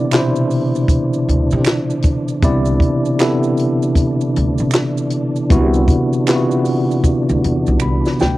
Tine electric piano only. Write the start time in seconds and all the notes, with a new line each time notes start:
Already playing: C3 B3 E4 D5
0.11 B2 C3 E4 C5
2.42 C3 B3 E4 D5
3.19 C3 B3 E4 A4
5.50 C3 B3 E4 F#4
6.27 C3 B3 E4 F4
6.35 F#4
7.82 B5
8.21 G5